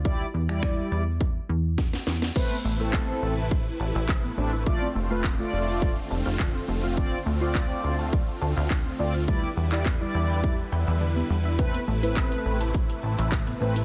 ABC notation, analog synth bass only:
X:1
M:4/4
L:1/16
Q:1/4=104
K:Am
V:1 name="Analog synth bass" clef=bass
D,,2 E,,4 E,,4 E,,4 E,,2 | z2 A,,,4 A,,,4 A,,, A,,,3 A,,,2- | A,,,2 F,,,4 F,,,4 F,,, F,,,3 F,,,2- | F,,,2 D,,4 D,,4 D,, D,,3 D,,2- |
D,,2 E,,4 E,,4 E,, E,,3 E,,2- | E,,2 A,,,4 A,,,4 A,,, A,,,3 A,,,2 |]